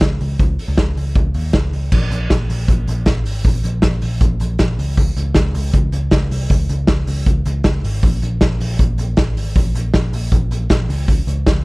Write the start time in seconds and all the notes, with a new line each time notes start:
0.00 C#2, kick, snare, closed hi-hat
0.21 C#2, open hi-hat
0.39 C#2, kick, closed hi-hat
0.59 open hi-hat
0.68 C#2
0.78 kick, snare, closed hi-hat
0.97 C#2, open hi-hat
1.15 C#2, kick, closed hi-hat
1.34 D#2, open hi-hat
1.53 C#2, kick, snare, closed hi-hat
1.73 C#2, open hi-hat
1.92 A#1, kick, crash
2.11 A#1, hi-hat pedal, open hi-hat
2.30 A#1, kick, snare, hi-hat pedal, open hi-hat
2.49 A#1, hi-hat pedal, open hi-hat
2.68 A#1, kick, hi-hat pedal, open hi-hat
2.87 A#1, hi-hat pedal, open hi-hat
3.06 A#1, kick, snare, hi-hat pedal, open hi-hat
3.25 G#1, hi-hat pedal, open hi-hat
3.44 A#1, kick, hi-hat pedal, open hi-hat
3.63 A#1, hi-hat pedal, open hi-hat
3.82 A#1, kick, snare, hi-hat pedal, open hi-hat
4.01 A#1, hi-hat pedal, open hi-hat
4.21 A#1, kick, hi-hat pedal, open hi-hat
4.40 A#1, hi-hat pedal, open hi-hat
4.59 A#1, kick, snare, hi-hat pedal, open hi-hat
4.79 C#2, hi-hat pedal, open hi-hat
4.97 kick, hi-hat pedal, open hi-hat
5.16 C#2, hi-hat pedal, open hi-hat
5.35 C#2, kick, snare, hi-hat pedal, open hi-hat
5.54 C#2, hi-hat pedal, open hi-hat
5.73 C#2, kick, hi-hat pedal, open hi-hat
5.92 C#2, hi-hat pedal, open hi-hat
6.11 C#2, kick, snare, hi-hat pedal, open hi-hat
6.31 C2, hi-hat pedal, open hi-hat
6.50 C#2, kick, hi-hat pedal, open hi-hat
6.69 C#2, hi-hat pedal, open hi-hat
6.87 C#2, kick, snare, hi-hat pedal, open hi-hat
7.07 C#2, hi-hat pedal, open hi-hat
7.26 C#2, kick, hi-hat pedal, open hi-hat
7.45 C#2, hi-hat pedal, open hi-hat
7.64 C#2, kick, snare, hi-hat pedal, open hi-hat
7.84 G#1, hi-hat pedal, open hi-hat
8.03 A#1, kick, hi-hat pedal, open hi-hat
8.22 A#1, hi-hat pedal, open hi-hat
8.41 A#1, kick, snare, hi-hat pedal, open hi-hat
8.60 A#1, hi-hat pedal, open hi-hat
8.79 A#1, kick, hi-hat pedal, open hi-hat
8.98 A#1, hi-hat pedal, open hi-hat
9.17 kick, snare, hi-hat pedal, open hi-hat
9.37 G#1, hi-hat pedal, open hi-hat
9.55 A#1, kick, hi-hat pedal, open hi-hat
9.75 A#1, hi-hat pedal, open hi-hat
9.94 A#1, kick, snare, hi-hat pedal, open hi-hat
10.13 A#1, hi-hat pedal, open hi-hat
10.32 A#1, kick, hi-hat pedal, open hi-hat
10.51 A#1, hi-hat pedal, open hi-hat
10.70 A#1, kick, snare, hi-hat pedal, open hi-hat
10.89 C#2, hi-hat pedal, open hi-hat
11.08 kick, hi-hat pedal, open hi-hat
11.27 C#2, hi-hat pedal, open hi-hat
11.46 C#2, kick, snare, hi-hat pedal, open hi-hat